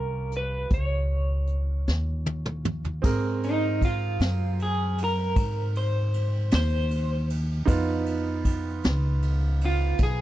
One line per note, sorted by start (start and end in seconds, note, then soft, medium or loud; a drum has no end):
0.00 0.69 C2 medium
0.00 2.99 C#4 medium
0.00 3.00 F4 soft
0.00 3.00 G4 medium
0.00 0.36 A#4 medium
0.32 closed hi-hat medium
0.37 0.71 B4 medium
0.70 1.84 C#2 medium
0.70 2.63 C#5 medium
0.70 kick loud
0.70 closed hi-hat medium
1.47 closed hi-hat medium
1.88 3.01 D#2 medium
1.88 snare medium
2.26 high tom medium
2.46 mid tom medium
2.65 mid tom medium
2.84 floor tom medium
3.02 4.17 G#2 medium
3.02 7.63 C4 medium
3.02 7.64 G#4 medium
3.02 7.64 A#4 medium
3.02 kick loud
3.02 crash loud
3.43 3.81 D#4 medium
3.43 ride medium
3.82 4.58 F4 medium
3.82 kick medium
3.82 ride medium
4.20 5.33 F#2 medium
4.20 snare loud
4.20 ride medium
4.59 4.98 G#4 medium
4.59 ride medium
4.98 ride medium
5.04 5.76 A#4 medium
5.36 6.49 G#2 medium
5.36 kick loud
5.36 ride medium
5.75 6.51 C5 medium
5.75 ride medium
6.14 ride medium
6.51 7.65 D#2 loud
6.51 7.29 C5 loud
6.51 snare loud
6.51 ride medium
6.91 ride medium
7.30 ride medium
7.65 8.80 F2 medium
7.65 10.21 B3 medium
7.65 10.21 D#4 medium
7.65 10.21 F4 medium
7.65 kick loud
7.65 ride medium
8.06 ride medium
8.45 kick medium
8.45 ride medium
8.84 9.97 C#2 loud
8.84 snare loud
8.84 ride medium
9.22 ride medium
9.61 ride medium
9.65 10.01 F4 medium
9.98 10.21 B1 medium
9.98 kick loud
9.98 ride medium
10.03 10.21 G#4 medium